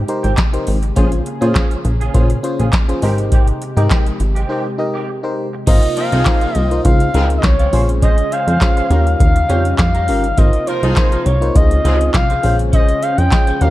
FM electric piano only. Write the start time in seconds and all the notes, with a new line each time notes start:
0.08 D#4 G4 A#4 C5
0.53 D#4 G4 A#4 C5
0.96 C#4 F4 G#4 C5
1.41 C#4 F4 G#4 C5
2.14 C#4 F4 G#4 C5
2.43 C#4 F4 G#4 C5
2.88 C#4 F4 G#4 C5
3.02 D#4 G4 A#4 C5
3.76 D#4 G4 A#4 D#5
4.49 D#4 G4 A#4 C5
4.78 D#4 G4 A#4 D#5
5.23 D#4 G4 A#4 C5
5.67 D#4 F4 A#4 C5
6.26 D#4 F4 A#4 C5
6.71 D#4 F4 A#4 C5
6.85 D#4 F4 G#4 C5
7.14 D#4 F4 G#4 A#4
7.73 C#4 F4 G#4 C5
8.61 C#4 F4 G#4 C5
8.90 C#4 F4 G4 A#4
9.49 C#4 F4 G4 C#5
10.08 C#4 F4 G4 A#4
10.38 D#4 F4 A#4 C5
10.97 D#4 F4 A#4 C5
11.41 D#4 F4 A#4 C5
11.55 D#4 F4 G#4 C5
11.84 D#4 F4 G#4 C5
12.43 C#4 F4 G#4 C5
13.31 C#4 F4 G#4 D#5
13.61 C#4 F4 G4 A#4